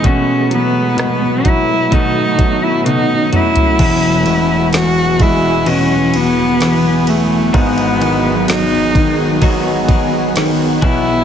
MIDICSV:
0, 0, Header, 1, 6, 480
1, 0, Start_track
1, 0, Key_signature, 4, "major"
1, 0, Tempo, 937500
1, 24, Time_signature, 4, 2, 24, 8
1, 5756, End_track
2, 0, Start_track
2, 0, Title_t, "Cello"
2, 0, Program_c, 0, 42
2, 31, Note_on_c, 0, 61, 85
2, 267, Note_off_c, 0, 61, 0
2, 273, Note_on_c, 0, 59, 86
2, 750, Note_on_c, 0, 64, 95
2, 758, Note_off_c, 0, 59, 0
2, 989, Note_on_c, 0, 63, 92
2, 996, Note_off_c, 0, 64, 0
2, 1352, Note_on_c, 0, 64, 80
2, 1360, Note_off_c, 0, 63, 0
2, 1465, Note_off_c, 0, 64, 0
2, 1469, Note_on_c, 0, 63, 85
2, 1689, Note_off_c, 0, 63, 0
2, 1717, Note_on_c, 0, 64, 101
2, 2410, Note_off_c, 0, 64, 0
2, 2433, Note_on_c, 0, 66, 93
2, 2671, Note_on_c, 0, 64, 89
2, 2678, Note_off_c, 0, 66, 0
2, 2912, Note_on_c, 0, 61, 91
2, 2919, Note_off_c, 0, 64, 0
2, 3155, Note_on_c, 0, 59, 101
2, 3162, Note_off_c, 0, 61, 0
2, 3630, Note_on_c, 0, 57, 88
2, 3638, Note_off_c, 0, 59, 0
2, 3870, Note_on_c, 0, 59, 95
2, 3878, Note_off_c, 0, 57, 0
2, 4348, Note_on_c, 0, 63, 80
2, 4355, Note_off_c, 0, 59, 0
2, 4826, Note_off_c, 0, 63, 0
2, 5545, Note_on_c, 0, 64, 110
2, 5756, Note_off_c, 0, 64, 0
2, 5756, End_track
3, 0, Start_track
3, 0, Title_t, "Ambient pad"
3, 0, Program_c, 1, 92
3, 0, Note_on_c, 1, 59, 82
3, 19, Note_on_c, 1, 47, 72
3, 19, Note_on_c, 1, 54, 67
3, 21, Note_on_c, 1, 66, 81
3, 24, Note_on_c, 1, 57, 68
3, 963, Note_off_c, 1, 59, 0
3, 979, Note_on_c, 1, 61, 79
3, 1922, Note_off_c, 1, 47, 0
3, 1922, Note_off_c, 1, 54, 0
3, 1923, Note_off_c, 1, 66, 0
3, 1924, Note_off_c, 1, 57, 0
3, 1932, Note_off_c, 1, 61, 0
3, 1942, Note_on_c, 1, 66, 89
3, 1943, Note_on_c, 1, 52, 80
3, 1943, Note_on_c, 1, 68, 73
3, 1945, Note_on_c, 1, 59, 73
3, 1948, Note_on_c, 1, 54, 74
3, 2893, Note_off_c, 1, 66, 0
3, 2905, Note_on_c, 1, 64, 81
3, 3844, Note_off_c, 1, 52, 0
3, 3855, Note_off_c, 1, 64, 0
3, 3860, Note_on_c, 1, 66, 90
3, 3863, Note_on_c, 1, 51, 78
3, 5523, Note_off_c, 1, 68, 0
3, 5525, Note_off_c, 1, 66, 0
3, 5526, Note_off_c, 1, 51, 0
3, 5548, Note_on_c, 1, 64, 88
3, 5756, Note_off_c, 1, 54, 0
3, 5756, Note_off_c, 1, 59, 0
3, 5756, Note_off_c, 1, 64, 0
3, 5756, End_track
4, 0, Start_track
4, 0, Title_t, "Clean electric guitar"
4, 0, Program_c, 2, 27
4, 17, Note_on_c, 2, 47, 64
4, 28, Note_on_c, 2, 57, 72
4, 32, Note_on_c, 2, 59, 76
4, 34, Note_on_c, 2, 66, 71
4, 971, Note_off_c, 2, 47, 0
4, 975, Note_off_c, 2, 57, 0
4, 977, Note_on_c, 2, 47, 74
4, 978, Note_on_c, 2, 51, 69
4, 980, Note_off_c, 2, 59, 0
4, 981, Note_on_c, 2, 57, 73
4, 982, Note_off_c, 2, 66, 0
4, 982, Note_on_c, 2, 59, 71
4, 984, Note_on_c, 2, 66, 82
4, 1698, Note_off_c, 2, 66, 0
4, 1700, Note_off_c, 2, 47, 0
4, 1700, Note_on_c, 2, 66, 44
4, 1701, Note_off_c, 2, 51, 0
4, 1702, Note_off_c, 2, 57, 0
4, 1704, Note_off_c, 2, 59, 0
4, 1706, Note_on_c, 2, 59, 40
4, 1709, Note_on_c, 2, 57, 36
4, 1937, Note_on_c, 2, 40, 66
4, 1941, Note_on_c, 2, 47, 73
4, 1942, Note_off_c, 2, 66, 0
4, 1944, Note_off_c, 2, 57, 0
4, 1944, Note_on_c, 2, 52, 70
4, 1945, Note_off_c, 2, 59, 0
4, 1946, Note_on_c, 2, 56, 76
4, 1951, Note_on_c, 2, 59, 78
4, 1953, Note_on_c, 2, 66, 85
4, 2889, Note_off_c, 2, 40, 0
4, 2892, Note_off_c, 2, 47, 0
4, 2895, Note_off_c, 2, 52, 0
4, 2895, Note_on_c, 2, 40, 71
4, 2898, Note_on_c, 2, 47, 76
4, 2901, Note_on_c, 2, 52, 80
4, 2905, Note_off_c, 2, 59, 0
4, 2907, Note_off_c, 2, 66, 0
4, 2907, Note_on_c, 2, 59, 78
4, 2909, Note_on_c, 2, 66, 80
4, 2925, Note_off_c, 2, 56, 0
4, 3853, Note_off_c, 2, 40, 0
4, 3854, Note_off_c, 2, 47, 0
4, 3855, Note_off_c, 2, 52, 0
4, 3855, Note_on_c, 2, 44, 75
4, 3856, Note_on_c, 2, 51, 77
4, 3857, Note_off_c, 2, 59, 0
4, 3857, Note_on_c, 2, 54, 79
4, 3858, Note_on_c, 2, 59, 77
4, 3859, Note_on_c, 2, 63, 80
4, 3860, Note_off_c, 2, 66, 0
4, 3862, Note_on_c, 2, 68, 82
4, 4093, Note_off_c, 2, 68, 0
4, 4097, Note_off_c, 2, 63, 0
4, 4099, Note_off_c, 2, 44, 0
4, 4099, Note_on_c, 2, 68, 51
4, 4100, Note_off_c, 2, 51, 0
4, 4100, Note_off_c, 2, 54, 0
4, 4101, Note_off_c, 2, 59, 0
4, 4103, Note_on_c, 2, 63, 44
4, 4107, Note_on_c, 2, 59, 40
4, 4108, Note_on_c, 2, 54, 38
4, 4820, Note_on_c, 2, 44, 75
4, 4821, Note_off_c, 2, 63, 0
4, 4821, Note_off_c, 2, 68, 0
4, 4822, Note_on_c, 2, 51, 78
4, 4823, Note_off_c, 2, 54, 0
4, 4823, Note_off_c, 2, 59, 0
4, 4825, Note_on_c, 2, 54, 81
4, 4825, Note_on_c, 2, 59, 88
4, 4827, Note_on_c, 2, 63, 87
4, 4828, Note_on_c, 2, 68, 76
4, 5053, Note_off_c, 2, 68, 0
4, 5057, Note_off_c, 2, 63, 0
4, 5059, Note_off_c, 2, 59, 0
4, 5059, Note_on_c, 2, 68, 60
4, 5062, Note_off_c, 2, 44, 0
4, 5063, Note_off_c, 2, 51, 0
4, 5063, Note_on_c, 2, 63, 56
4, 5064, Note_off_c, 2, 54, 0
4, 5065, Note_on_c, 2, 59, 50
4, 5070, Note_on_c, 2, 54, 43
4, 5535, Note_off_c, 2, 68, 0
4, 5537, Note_on_c, 2, 66, 65
4, 5540, Note_off_c, 2, 63, 0
4, 5542, Note_on_c, 2, 64, 58
4, 5544, Note_off_c, 2, 59, 0
4, 5546, Note_off_c, 2, 54, 0
4, 5546, Note_on_c, 2, 59, 51
4, 5548, Note_on_c, 2, 52, 52
4, 5552, Note_on_c, 2, 47, 48
4, 5756, Note_off_c, 2, 47, 0
4, 5756, Note_off_c, 2, 52, 0
4, 5756, Note_off_c, 2, 59, 0
4, 5756, Note_off_c, 2, 64, 0
4, 5756, Note_off_c, 2, 66, 0
4, 5756, End_track
5, 0, Start_track
5, 0, Title_t, "Grand piano"
5, 0, Program_c, 3, 0
5, 0, Control_c, 3, 64, 127
5, 18, Note_on_c, 3, 47, 62
5, 31, Control_c, 3, 64, 0
5, 131, Control_c, 3, 64, 127
5, 258, Note_on_c, 3, 54, 48
5, 488, Note_off_c, 3, 47, 0
5, 495, Note_on_c, 3, 47, 53
5, 731, Note_off_c, 3, 54, 0
5, 739, Note_on_c, 3, 54, 49
5, 973, Note_off_c, 3, 47, 0
5, 981, Note_on_c, 3, 47, 50
5, 1212, Note_off_c, 3, 54, 0
5, 1220, Note_on_c, 3, 54, 49
5, 1454, Note_off_c, 3, 47, 0
5, 1461, Note_on_c, 3, 47, 50
5, 1695, Note_off_c, 3, 54, 0
5, 1702, Note_on_c, 3, 54, 47
5, 1928, Note_off_c, 3, 47, 0
5, 1936, Note_off_c, 3, 54, 0
5, 1941, Note_on_c, 3, 28, 60
5, 1941, Note_on_c, 3, 40, 63
5, 1949, Control_c, 3, 64, 0
5, 2035, Control_c, 3, 64, 127
5, 2182, Note_on_c, 3, 47, 49
5, 2423, Note_on_c, 3, 52, 51
5, 2662, Note_on_c, 3, 56, 54
5, 2892, Note_off_c, 3, 47, 0
5, 2900, Note_on_c, 3, 47, 53
5, 3363, Note_off_c, 3, 52, 0
5, 3379, Note_on_c, 3, 52, 53
5, 3602, Note_off_c, 3, 56, 0
5, 3841, Note_off_c, 3, 28, 0
5, 3841, Note_off_c, 3, 47, 0
5, 3842, Note_off_c, 3, 40, 0
5, 3847, Note_off_c, 3, 52, 0
5, 3858, Note_on_c, 3, 44, 69
5, 3859, Note_on_c, 3, 32, 63
5, 3871, Control_c, 3, 64, 0
5, 3957, Control_c, 3, 64, 127
5, 4098, Note_on_c, 3, 51, 53
5, 4342, Note_on_c, 3, 54, 53
5, 4572, Note_off_c, 3, 51, 0
5, 4580, Note_on_c, 3, 51, 53
5, 4816, Note_off_c, 3, 54, 0
5, 4823, Note_on_c, 3, 54, 56
5, 5298, Note_off_c, 3, 51, 0
5, 5306, Note_on_c, 3, 51, 54
5, 5520, Note_off_c, 3, 44, 0
5, 5521, Note_off_c, 3, 32, 0
5, 5523, Note_off_c, 3, 54, 0
5, 5538, Note_off_c, 3, 51, 0
5, 5542, Note_on_c, 3, 35, 63
5, 5543, Note_on_c, 3, 47, 65
5, 5551, Control_c, 3, 64, 0
5, 5625, Control_c, 3, 64, 127
5, 5756, Note_off_c, 3, 35, 0
5, 5756, Note_off_c, 3, 47, 0
5, 5756, End_track
6, 0, Start_track
6, 0, Title_t, "Drums"
6, 21, Note_on_c, 9, 42, 83
6, 22, Note_on_c, 9, 36, 93
6, 73, Note_off_c, 9, 36, 0
6, 73, Note_off_c, 9, 42, 0
6, 262, Note_on_c, 9, 42, 53
6, 313, Note_off_c, 9, 42, 0
6, 502, Note_on_c, 9, 42, 85
6, 509, Note_on_c, 9, 37, 104
6, 553, Note_off_c, 9, 42, 0
6, 560, Note_off_c, 9, 37, 0
6, 742, Note_on_c, 9, 42, 61
6, 743, Note_on_c, 9, 36, 73
6, 793, Note_off_c, 9, 42, 0
6, 794, Note_off_c, 9, 36, 0
6, 983, Note_on_c, 9, 42, 72
6, 984, Note_on_c, 9, 36, 69
6, 1034, Note_off_c, 9, 42, 0
6, 1035, Note_off_c, 9, 36, 0
6, 1222, Note_on_c, 9, 36, 72
6, 1223, Note_on_c, 9, 42, 64
6, 1273, Note_off_c, 9, 36, 0
6, 1274, Note_off_c, 9, 42, 0
6, 1464, Note_on_c, 9, 48, 49
6, 1465, Note_on_c, 9, 42, 76
6, 1515, Note_off_c, 9, 48, 0
6, 1516, Note_off_c, 9, 42, 0
6, 1703, Note_on_c, 9, 42, 58
6, 1704, Note_on_c, 9, 45, 75
6, 1754, Note_off_c, 9, 42, 0
6, 1755, Note_off_c, 9, 45, 0
6, 1821, Note_on_c, 9, 42, 51
6, 1822, Note_on_c, 9, 43, 78
6, 1872, Note_off_c, 9, 42, 0
6, 1874, Note_off_c, 9, 43, 0
6, 1941, Note_on_c, 9, 49, 91
6, 1941, Note_on_c, 9, 51, 74
6, 1942, Note_on_c, 9, 36, 99
6, 1992, Note_off_c, 9, 49, 0
6, 1992, Note_off_c, 9, 51, 0
6, 1993, Note_off_c, 9, 36, 0
6, 2062, Note_on_c, 9, 51, 40
6, 2113, Note_off_c, 9, 51, 0
6, 2180, Note_on_c, 9, 51, 49
6, 2231, Note_off_c, 9, 51, 0
6, 2420, Note_on_c, 9, 51, 73
6, 2427, Note_on_c, 9, 38, 116
6, 2471, Note_off_c, 9, 51, 0
6, 2479, Note_off_c, 9, 38, 0
6, 2660, Note_on_c, 9, 51, 57
6, 2662, Note_on_c, 9, 36, 79
6, 2711, Note_off_c, 9, 51, 0
6, 2713, Note_off_c, 9, 36, 0
6, 2900, Note_on_c, 9, 51, 67
6, 2951, Note_off_c, 9, 51, 0
6, 3142, Note_on_c, 9, 51, 56
6, 3193, Note_off_c, 9, 51, 0
6, 3382, Note_on_c, 9, 51, 70
6, 3388, Note_on_c, 9, 38, 102
6, 3433, Note_off_c, 9, 51, 0
6, 3440, Note_off_c, 9, 38, 0
6, 3621, Note_on_c, 9, 51, 54
6, 3672, Note_off_c, 9, 51, 0
6, 3861, Note_on_c, 9, 36, 108
6, 3861, Note_on_c, 9, 51, 71
6, 3912, Note_off_c, 9, 51, 0
6, 3913, Note_off_c, 9, 36, 0
6, 3982, Note_on_c, 9, 51, 41
6, 4033, Note_off_c, 9, 51, 0
6, 4104, Note_on_c, 9, 51, 50
6, 4155, Note_off_c, 9, 51, 0
6, 4343, Note_on_c, 9, 51, 71
6, 4350, Note_on_c, 9, 38, 119
6, 4394, Note_off_c, 9, 51, 0
6, 4402, Note_off_c, 9, 38, 0
6, 4583, Note_on_c, 9, 36, 79
6, 4585, Note_on_c, 9, 51, 58
6, 4634, Note_off_c, 9, 36, 0
6, 4636, Note_off_c, 9, 51, 0
6, 4821, Note_on_c, 9, 51, 65
6, 4822, Note_on_c, 9, 36, 75
6, 4872, Note_off_c, 9, 51, 0
6, 4874, Note_off_c, 9, 36, 0
6, 5061, Note_on_c, 9, 36, 82
6, 5062, Note_on_c, 9, 51, 55
6, 5112, Note_off_c, 9, 36, 0
6, 5113, Note_off_c, 9, 51, 0
6, 5303, Note_on_c, 9, 51, 75
6, 5309, Note_on_c, 9, 38, 96
6, 5354, Note_off_c, 9, 51, 0
6, 5360, Note_off_c, 9, 38, 0
6, 5541, Note_on_c, 9, 36, 101
6, 5542, Note_on_c, 9, 51, 53
6, 5593, Note_off_c, 9, 36, 0
6, 5593, Note_off_c, 9, 51, 0
6, 5756, End_track
0, 0, End_of_file